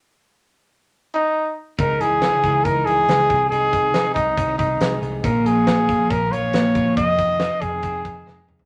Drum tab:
HH |----------------|x-x-x-x-x-x-x-x-|x-x-x-x-x-x-x-x-|x-x-x-x-x-x-x-x-|
SD |----------------|----o-------o---|----o-------o---|----o-------o---|
T2 |----------------|----------------|----------------|----------------|
FT |----------------|----------------|----------------|----------------|
BD |----------------|o-----o-o-----o-|--o---o-o-o-----|o-----o-o-----o-|

HH |x-x-x-x-x-x-----|
SD |----o-------o---|
T2 |--------------o-|
FT |---------------o|
BD |o-o---o-o-o-----|